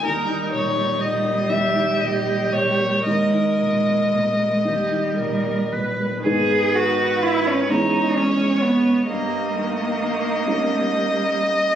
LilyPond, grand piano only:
\new Staff \with { instrumentName = "Grand piano" } { \time 6/8 \key dis \phrygian \tempo 4. = 42 dis,16 dis'16 ais,16 ais16 ais,16 ais16 dis,16 dis'16 ais,16 ais16 ais,16 ais16 | dis,16 dis'16 ais,16 ais16 ais,16 ais16 dis,16 dis'16 ais,16 ais16 ais,16 ais16 | <gis, b dis' gis'>4. <e, cis' e' gis'>4. | g,4. <cis' dis' ais'>4. | }